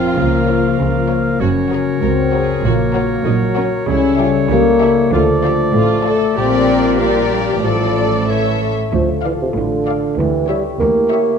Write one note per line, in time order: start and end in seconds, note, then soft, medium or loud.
0.00 0.20 A#2 soft
0.00 1.37 F3 soft
0.00 1.43 F3 soft
0.00 1.08 A#3 soft
0.00 0.16 C4 medium
0.00 0.46 C#4 soft
0.00 0.77 F4 soft
0.00 1.37 F4 medium
0.00 1.36 A#4 soft
0.00 1.42 F5 soft
0.16 0.66 C#2 medium
0.16 1.42 C#3 soft
0.16 0.66 C#3 medium
0.16 0.78 A#3 medium
0.47 4.37 C#4 soft
0.47 0.72 F4 soft
0.47 0.72 A#4 soft
0.47 0.71 C#5 soft
0.78 1.28 C#2 soft
0.78 1.28 C#3 medium
0.78 1.39 A#3 medium
0.78 1.42 F4 soft
1.09 2.31 A#3 soft
1.09 1.33 F4 soft
1.09 1.33 A#4 soft
1.09 1.33 C#5 soft
1.40 1.89 F#1 medium
1.40 2.65 F#2 soft
1.40 1.89 F#2 medium
1.40 3.83 F#3 soft
1.40 2.00 C#4 medium
1.40 1.48 F#4 medium
1.40 3.84 A#4 soft
1.40 3.87 C#5 medium
1.71 2.65 C#3 soft
1.71 1.94 F#4 soft
1.71 1.79 G#4 soft
1.71 1.94 A#4 soft
1.71 1.94 C#5 soft
2.02 2.50 C#2 medium
2.02 2.54 C4 medium
2.02 3.22 F#4 soft
2.02 2.11 A#4 medium
2.31 3.54 A#3 soft
2.31 2.55 F#4 soft
2.31 2.63 G#4 medium
2.31 2.55 A#4 soft
2.31 2.55 C#5 medium
2.56 2.63 C4 soft
2.63 3.11 A#1 medium
2.63 3.90 A#2 medium
2.63 3.12 A#2 medium
2.63 3.25 A#3 medium
2.63 2.72 F#4 medium
2.93 3.90 F#3 soft
2.93 3.03 F4 soft
2.93 3.17 F#4 medium
2.93 3.17 A#4 medium
2.93 3.17 C#5 medium
3.24 3.74 A#1 medium
3.24 3.74 A#2 medium
3.24 3.71 F#3 medium
3.24 3.33 D#4 medium
3.24 3.90 F#4 soft
3.55 3.90 A#3 soft
3.55 3.64 C#4 medium
3.55 3.79 F#4 medium
3.55 3.80 A#4 medium
3.55 3.79 C#5 medium
3.87 4.36 C#2 medium
3.87 5.14 C#3 medium
3.87 4.37 C#3 medium
3.87 5.09 G3 medium
3.87 4.49 C#4 medium
3.87 4.19 E4 medium
3.87 6.04 A4 medium
3.87 5.10 C#5 medium
4.17 5.15 G3 soft
4.17 4.28 F4 medium
4.17 4.42 G4 medium
4.17 4.42 A4 medium
4.17 4.41 E5 medium
4.49 4.99 C#2 medium
4.49 4.99 C#3 medium
4.49 5.11 A#3 medium
4.49 5.14 E4 soft
4.49 4.59 G4 medium
4.80 4.91 E4 medium
4.80 5.04 G4 medium
4.80 5.04 A4 medium
4.80 5.04 E5 medium
5.11 5.61 D2 medium
5.11 6.39 D3 medium
5.11 5.61 D3 medium
5.11 6.06 F3 medium
5.11 5.72 A3 medium
5.11 5.21 F4 medium
5.11 7.32 D5 medium
5.43 6.39 A3 soft
5.43 5.67 F4 medium
5.43 5.52 G4 medium
5.43 5.67 A4 medium
5.43 5.66 D5 medium
5.73 6.23 A1 medium
5.73 6.23 A2 medium
5.73 6.35 A3 medium
5.73 6.39 F4 soft
5.73 6.05 F4 medium
6.05 6.98 D4 soft
6.05 6.28 F4 medium
6.05 6.28 A4 medium
6.05 6.37 A4 medium
6.05 6.29 D5 medium
6.35 7.60 A#1 medium
6.35 7.67 A#2 medium
6.35 7.60 A#2 medium
6.35 7.66 G3 medium
6.35 7.00 C4 medium
6.35 6.96 G4 medium
6.35 6.44 G4 medium
6.35 6.96 A#4 medium
6.35 7.66 A#4 medium
6.35 6.97 D5 medium
6.68 7.67 A#3 soft
6.68 7.63 G4 medium
6.99 7.32 A#3 medium
6.99 7.95 D4 soft
6.99 7.63 G4 soft
6.99 7.63 A#4 medium
6.99 7.64 D5 soft
7.29 7.37 G3 medium
7.29 7.67 G3 soft
7.48 7.64 E3 soft
7.61 8.73 A1 soft
7.61 8.28 A2 soft
7.61 8.73 A2 soft
7.61 8.27 F3 medium
7.61 8.31 F3 soft
7.61 8.28 A4 soft
7.61 8.62 A4 soft
7.61 8.62 A4 medium
7.61 8.29 D5 soft
7.61 8.31 D5 soft
7.65 8.28 D5 soft
7.96 8.31 D4 soft
7.96 8.32 F4 soft
8.29 8.96 A2 soft
8.29 8.62 E3 soft
8.29 8.72 A4 soft
8.29 8.73 C#5 soft
8.29 8.62 C#5 soft
8.29 8.72 E5 soft
8.61 8.96 C#4 soft
8.61 8.96 E4 soft
8.92 9.43 D2 medium
8.92 9.44 D2 medium
8.92 10.18 D3 soft
8.92 9.08 F3 medium
8.92 10.14 F4 medium
8.92 10.14 A4 soft
9.23 9.32 E3 medium
9.23 10.21 D4 soft
9.23 9.49 A4 soft
9.23 9.49 D5 soft
9.23 9.48 F5 soft
9.42 9.49 C3 medium
9.56 10.05 A1 medium
9.56 10.06 A2 medium
9.56 10.20 D3 medium
9.56 10.21 F4 soft
9.88 10.11 A4 soft
9.88 10.11 D5 medium
9.88 10.21 D5 soft
9.88 10.11 F5 medium
10.17 10.67 D2 medium
10.17 11.39 D3 medium
10.17 10.49 E3 medium
10.17 11.38 E4 medium
10.17 11.38 G4 medium
10.49 10.63 G3 medium
10.49 11.39 C#4 soft
10.49 10.72 G4 soft
10.49 10.72 C#5 medium
10.49 10.72 E5 medium
10.80 11.28 D2 medium
10.80 11.29 D2 medium
10.80 11.39 A#3 medium
10.80 11.39 E4 soft
11.10 11.33 G4 medium
11.10 11.39 C#5 medium
11.10 11.33 C#5 medium
11.10 11.33 E5 medium